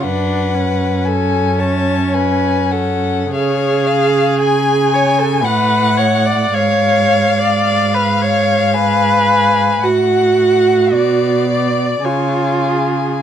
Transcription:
<<
  \new Staff \with { instrumentName = "Violin" } { \time 3/4 \key fis \minor \tempo 4 = 55 fis''4 gis''8 a''8 gis''8 fis''8 | eis''4 gis''4 fis''4 | eis''2 gis''8 gis''8 | fis''4 d''4 gis''4 | }
  \new Staff \with { instrumentName = "Violin" } { \time 3/4 \key fis \minor b'4 a'8 cis''8 b'8 a'8 | cis''8 eis''8 gis''4 fis''4 | eis''4 eis''2 | fis''4 d''4 cis''8 gis'8 | }
  \new Staff \with { instrumentName = "Viola" } { \time 3/4 \key fis \minor d'8 cis'2~ cis'8 | gis'4. cis''16 a'16 b'8 cis''16 d''16 | cis''8. d''8 b'16 cis''8 b'4 | fis'4. d''8 eis'4 | }
  \new Staff \with { instrumentName = "Cello" } { \clef bass \time 3/4 \key fis \minor fis,2. | cis2 a,4 | gis,2. | a,4 b,4 cis4 | }
>>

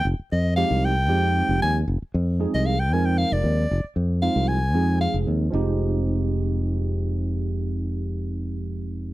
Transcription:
<<
  \new Staff \with { instrumentName = "Soprano saxophone" } { \time 7/8 \key f \minor \tempo 4 = 115 r8 ees''8 f''8 g''4. aes''8 | r4 r16 ees''16 f''16 g''16 aes''16 g''16 f''16 d''8.~ | d''16 r8. f''8 aes''4 f''8 r8 | r2. r8 |
r2. r8 | }
  \new Staff \with { instrumentName = "Tine electric piano" } { \time 7/8 \key f \minor r4 <f aes c' ees' g'>8 r8 <f aes c' ees' g'>4. | r4 <f aes c' ees' aes'>8 r8 <f aes c' ees' bes'>4. | r4 <f aes c' ees' f'>8 r8 <f aes c' ees' aes'>4. | <f aes c' ees' g'>2.~ <f aes c' ees' g'>8~ |
<f aes c' ees' g'>2.~ <f aes c' ees' g'>8 | }
  \new Staff \with { instrumentName = "Fingered electric bass" } { \clef bass \time 7/8 \key f \minor f,,16 r16 f,8. c,8. f,8. f,,16 ees,8 | f,,16 r16 f,8. c,8. f,8. f,,16 ees,8 | f,,16 r16 f,8. c,8. f,8. f,,16 ees,8 | f,,2.~ f,,8~ |
f,,2.~ f,,8 | }
>>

